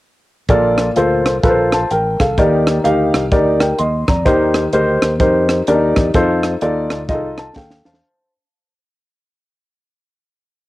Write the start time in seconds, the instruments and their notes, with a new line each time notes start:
0.49 fingered electric bass A#1, upright piano A#2 F4 A4 A#4 D5, kick, closed hi-hat
0.78 cross-stick, closed hi-hat
0.96 fingered electric bass D2, upright piano F4 A4 A#4 C5, closed hi-hat
1.26 fingered electric bass C2, cross-stick, closed hi-hat
1.43 fingered electric bass A#1, upright piano F4 A4 A#4 B4, kick, closed hi-hat
1.49 upright piano C5
1.72 upright piano C5 A5, cross-stick, closed hi-hat
1.91 fingered electric bass A1, upright piano A#4 G5, closed hi-hat
2.20 fingered electric bass C2, upright piano A4 F5, kick, cross-stick, closed hi-hat
2.38 fingered electric bass D#2, upright piano D#3 D#4 G4 A#4 D5, kick, closed hi-hat
2.67 cross-stick, closed hi-hat
2.84 fingered electric bass D2, upright piano D#4 G4 A#4 F5, closed hi-hat
3.14 fingered electric bass C2, cross-stick, closed hi-hat
3.32 fingered electric bass D2, upright piano D#4 G4 A#4 D5, kick, closed hi-hat
3.60 upright piano A#4 G5, cross-stick, closed hi-hat
3.78 fingered electric bass D#2, upright piano D#5 C6, closed hi-hat
4.08 fingered electric bass F2, upright piano D5 A#5, kick, cross-stick, closed hi-hat
4.26 fingered electric bass D#2, upright piano D#3 D#4 G4 A#4 C5, kick, closed hi-hat
4.54 cross-stick, closed hi-hat
4.73 fingered electric bass D2, upright piano D#4 G4 A#4 C5, closed hi-hat
5.02 fingered electric bass D#2, cross-stick, closed hi-hat
5.20 fingered electric bass F2, upright piano D#4 G4 A#4 C5, kick, closed hi-hat
5.49 cross-stick, closed hi-hat
5.67 fingered electric bass D#2, upright piano D4 G4 A#4 D5, closed hi-hat
5.74 upright piano D#4
5.96 fingered electric bass E2, kick, cross-stick, closed hi-hat
6.14 fingered electric bass F2, upright piano D#4 F4 A4 C5, kick, closed hi-hat
6.43 cross-stick, closed hi-hat
6.61 fingered electric bass D#2, upright piano D#4 F4 A4 D5, closed hi-hat
6.90 fingered electric bass D2, cross-stick, closed hi-hat
7.09 fingered electric bass C2, upright piano D#4 F4 G#4 D#5, kick, closed hi-hat
7.15 upright piano A4
7.38 upright piano A5, cross-stick, closed hi-hat
7.56 fingered electric bass D#2, upright piano A4 F5 G5, kick, snare
7.71 snare
7.85 upright piano C5 F5 A5, snare
7.94 snare